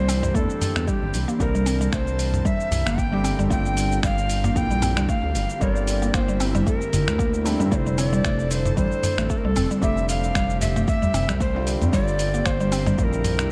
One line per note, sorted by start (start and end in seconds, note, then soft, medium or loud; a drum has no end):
0.00 0.31 C2 loud
0.00 0.31 D3 medium
0.00 3.47 E3 medium
0.00 0.32 G3 medium
0.00 7.68 G3 medium
0.00 7.68 A#3 medium
0.00 0.32 C4 medium
0.00 3.47 C4 medium
0.00 0.33 E4 medium
0.00 1.38 G4 medium
0.00 0.37 C5 loud
0.08 0.22 C4 loud
0.08 open hi-hat medium
0.08 cabasa medium
0.23 0.34 G3 medium
0.23 mid tom medium
0.23 cabasa soft
0.33 0.46 E2 loud
0.33 1.36 D3 medium
0.33 1.37 G3 medium
0.33 0.49 A3 medium
0.33 1.38 C4 medium
0.33 0.89 A4 medium
0.33 kick loud
0.33 cabasa soft
0.37 1.39 D4 medium
0.50 cabasa soft
0.62 mid tom medium
0.62 open hi-hat medium
0.62 cabasa medium
0.76 0.85 E2 medium
0.76 finger snap medium
0.76 cabasa soft
0.87 0.96 G3 medium
0.87 1.29 G4 medium
0.87 kick loud
0.87 cabasa soft
1.02 1.11 G1 medium
1.14 1.25 C2 medium
1.14 open hi-hat medium
1.14 cabasa medium
1.28 1.39 A#3 medium
1.28 cabasa soft
1.39 1.89 C2 loud
1.39 2.94 D3 medium
1.39 2.95 G3 medium
1.39 1.53 A#3 medium
1.39 2.96 C4 medium
1.39 1.89 A#4 medium
1.39 3.48 A5 medium
1.39 kick loud
1.39 cabasa soft
1.43 2.97 A#4 loud
1.55 1.66 G3 medium
1.55 cabasa soft
1.66 1.80 C4 loud
1.66 open hi-hat medium
1.66 cabasa medium
1.81 1.92 G3 medium
1.81 cabasa soft
1.92 2.41 C2 loud
1.92 2.06 A3 medium
1.92 2.47 C5 loud
1.92 finger snap medium
1.92 kick loud
1.92 cabasa soft
2.07 cabasa soft
2.19 open hi-hat medium
2.19 cabasa medium
2.34 mid tom medium
2.34 cabasa soft
2.45 2.54 G3 medium
2.45 3.00 E5 loud
2.45 kick loud
2.45 cabasa soft
2.60 cabasa soft
2.71 2.83 C2 medium
2.71 mid tom medium
2.71 open hi-hat loud
2.71 cabasa medium
2.86 3.34 G1 medium
2.86 2.97 A#3 medium
2.86 finger snap medium
2.86 cabasa soft
2.98 3.11 A#3 medium
2.98 3.39 G5 loud
2.98 kick loud
2.98 cabasa soft
3.11 3.47 D3 loud
3.11 3.48 G3 medium
3.11 3.24 G3 medium
3.11 3.48 C4 medium
3.11 3.48 G4 loud
3.24 3.38 C4 loud
3.24 open hi-hat medium
3.24 cabasa medium
3.38 3.48 G1 loud
3.38 3.50 G3 medium
3.38 mid tom medium
3.38 cabasa soft
3.49 3.99 G1 loud
3.49 4.52 D3 medium
3.49 13.52 D3 medium
3.49 4.53 G3 medium
3.49 3.64 A3 medium
3.49 4.53 C4 medium
3.49 5.59 D4 medium
3.49 4.54 F4 loud
3.49 7.68 G4 medium
3.49 4.00 G5 loud
3.49 kick loud
3.49 cabasa soft
3.66 cabasa soft
3.77 open hi-hat medium
3.77 cabasa medium
3.92 cabasa soft
4.03 4.52 G1 medium
4.03 4.12 G3 medium
4.03 4.58 F5 loud
4.03 finger snap medium
4.03 kick loud
4.03 cabasa soft
4.18 cabasa soft
4.30 open hi-hat medium
4.30 cabasa medium
4.44 4.55 A#3 medium
4.44 mid tom medium
4.44 cabasa soft
4.54 4.98 A#1 loud
4.54 5.57 D3 medium
4.54 5.59 E3 medium
4.54 5.58 G3 medium
4.54 4.69 A#3 medium
4.54 5.59 C4 medium
4.54 5.11 G5 loud
4.54 kick loud
4.54 cabasa soft
4.71 4.82 G3 medium
4.71 cabasa soft
4.82 4.96 C4 loud
4.82 mid tom medium
4.82 open hi-hat medium
4.82 cabasa medium
4.97 5.06 C2 medium
4.97 5.08 G3 medium
4.97 finger snap medium
4.97 cabasa soft
5.09 5.22 A3 medium
5.09 5.64 F5 loud
5.09 kick loud
5.09 cabasa soft
5.23 5.32 D2 medium
5.35 5.46 G1 medium
5.35 open hi-hat medium
5.35 cabasa medium
5.50 cabasa soft
5.59 6.10 G1 loud
5.59 7.15 D3 medium
5.59 7.16 G3 medium
5.59 5.70 G3 medium
5.59 7.17 C4 medium
5.59 7.70 E4 medium
5.59 6.16 D5 loud
5.59 kick loud
5.59 cabasa soft
5.64 7.18 A#4 loud
5.76 cabasa soft
5.87 open hi-hat medium
5.87 cabasa medium
6.02 6.13 A#3 medium
6.02 cabasa soft
6.14 6.62 G1 medium
6.14 6.27 A#3 medium
6.14 6.44 C5 loud
6.14 finger snap medium
6.14 kick loud
6.14 cabasa soft
6.28 6.40 G3 medium
6.28 cabasa soft
6.40 6.54 C4 loud
6.40 open hi-hat medium
6.40 cabasa medium
6.55 6.66 G3 medium
6.55 mid tom medium
6.55 cabasa soft
6.66 6.80 A3 medium
6.66 7.42 A#4 medium
6.66 kick loud
6.66 cabasa soft
6.82 cabasa soft
6.93 7.04 G1 medium
6.93 mid tom medium
6.93 open hi-hat medium
6.93 cabasa medium
7.07 7.55 D2 medium
7.07 finger snap medium
7.07 cabasa soft
7.19 7.33 A#3 medium
7.19 kick loud
7.19 cabasa soft
7.34 cabasa soft
7.44 7.52 D3 medium
7.44 7.53 G3 medium
7.44 7.53 C4 medium
7.44 7.59 D4 medium
7.44 7.53 E4 medium
7.44 open hi-hat medium
7.44 cabasa medium
7.60 7.69 G2 loud
7.60 7.71 G3 medium
7.60 mid tom medium
7.60 cabasa soft
7.69 8.20 F1 loud
7.69 8.73 D3 medium
7.69 8.74 G3 medium
7.69 7.85 A3 medium
7.69 11.89 A3 medium
7.69 13.52 C4 medium
7.69 11.89 C4 medium
7.69 8.74 C4 medium
7.69 9.80 A4 medium
7.69 13.52 C5 medium
7.69 7.76 D5 medium
7.69 kick loud
7.69 cabasa soft
7.74 8.75 E4 medium
7.74 8.00 C5 medium
7.86 7.98 G3 medium
7.86 cabasa soft
7.98 8.12 C4 loud
7.98 8.53 D5 loud
7.98 open hi-hat medium
7.98 cabasa medium
8.13 8.24 G3 medium
8.13 cabasa soft
8.24 8.73 F1 medium
8.24 8.38 A3 medium
8.24 finger snap medium
8.24 kick loud
8.24 cabasa soft
8.39 cabasa soft
8.51 8.76 C5 loud
8.51 open hi-hat medium
8.51 cabasa medium
8.66 mid tom medium
8.66 cabasa soft
8.75 8.89 A1 loud
8.75 9.79 D3 medium
8.75 9.79 G3 medium
8.75 8.85 G3 medium
8.75 9.80 C4 medium
8.75 9.80 D4 medium
8.75 9.31 C5 loud
8.75 kick loud
8.75 cabasa soft
8.92 cabasa soft
9.03 mid tom medium
9.03 open hi-hat medium
9.03 cabasa medium
9.18 9.27 A1 medium
9.18 9.29 A3 medium
9.18 finger snap medium
9.18 cabasa soft
9.30 9.43 A3 medium
9.30 9.39 A4 loud
9.30 kick loud
9.30 cabasa soft
9.38 9.46 A#4 medium
9.44 9.53 C2 medium
9.44 9.56 G3 medium
9.44 9.71 A4 medium
9.56 9.67 F1 medium
9.56 9.70 C4 loud
9.56 open hi-hat medium
9.56 udu medium
9.56 cabasa medium
9.71 9.82 G3 medium
9.71 cabasa soft
9.80 10.31 F1 loud
9.80 11.36 D3 medium
9.80 11.37 G3 medium
9.80 9.96 A3 medium
9.80 11.38 C4 medium
9.80 13.52 G4 medium
9.80 10.07 E5 loud
9.80 kick loud
9.80 cabasa soft
9.84 11.38 G4 loud
9.97 cabasa soft
10.09 10.58 F5 loud
10.09 open hi-hat medium
10.09 cabasa medium
10.24 cabasa soft
10.35 10.84 F1 loud
10.35 10.43 G3 medium
10.35 finger snap medium
10.35 kick loud
10.35 cabasa soft
10.50 cabasa soft
10.61 10.86 E5 loud
10.61 open hi-hat medium
10.61 udu medium
10.61 cabasa medium
10.76 10.87 A3 medium
10.76 mid tom medium
10.76 cabasa soft
10.88 11.01 A3 medium
10.88 11.37 E5 loud
10.88 kick loud
10.88 cabasa soft
11.02 11.13 G3 medium
11.02 udu medium
11.02 cabasa soft
11.14 11.26 F1 medium
11.14 11.28 C4 loud
11.14 mid tom medium
11.14 open hi-hat medium
11.14 cabasa medium
11.28 11.76 C2 medium
11.28 11.40 G3 medium
11.28 finger snap medium
11.28 cabasa soft
11.40 11.54 A3 medium
11.40 11.78 C5 loud
11.40 kick loud
11.40 cabasa soft
11.54 11.90 D3 loud
11.54 11.90 G3 medium
11.54 11.91 C4 medium
11.54 11.91 F4 loud
11.67 open hi-hat medium
11.67 cabasa medium
11.81 11.91 F2 loud
11.81 mid tom medium
11.81 udu medium
11.81 cabasa soft
11.91 12.42 G1 loud
11.91 12.94 D3 medium
11.91 12.95 G3 medium
11.91 12.01 G3 medium
11.91 13.52 G3 medium
11.91 13.52 A#3 medium
11.91 12.96 C4 medium
11.91 13.52 D4 medium
11.91 12.96 F4 loud
11.91 12.04 C#5 loud
11.91 kick loud
11.91 cabasa soft
12.04 12.47 D5 loud
12.04 cabasa soft
12.19 open hi-hat medium
12.19 cabasa medium
12.34 12.45 A#3 medium
12.34 cabasa soft
12.46 12.94 G1 loud
12.46 12.59 A#3 medium
12.46 12.99 C5 loud
12.46 finger snap medium
12.46 kick medium
12.46 cabasa soft
12.60 12.71 G3 medium
12.60 cabasa soft
12.72 12.86 C4 loud
12.72 open hi-hat medium
12.72 cabasa medium
12.86 12.98 G3 medium
12.86 mid tom medium
12.86 cabasa soft
12.97 13.41 A#1 loud
12.97 13.52 D3 medium
12.97 13.52 G3 medium
12.97 13.12 A3 medium
12.97 13.52 C4 medium
12.97 13.52 E4 medium
12.97 13.05 C5 medium
12.97 kick loud
12.97 cabasa soft
13.04 13.52 A#4 loud
13.13 cabasa soft
13.24 mid tom medium
13.24 open hi-hat loud
13.24 cabasa medium
13.39 13.48 C2 medium
13.39 finger snap medium
13.39 cabasa soft